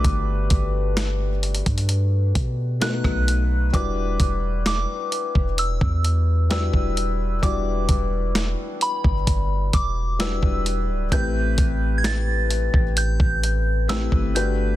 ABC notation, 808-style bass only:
X:1
M:4/4
L:1/16
Q:1/4=65
K:Em
V:1 name="808-style bass" clef=bass
G,,,2 G,,,4- G,,, G,,3 B,,3 B,,,3 | E,,,2 E,,,3 z2 E,,,2 E,,4 E,,,3 | E,,,2 E,,,3 z2 G,,,3 E,,,3 E,,,2 D,,, | A,,,2 A,,,4- A,,, A,,,2 A,,,4 G,,,3 |]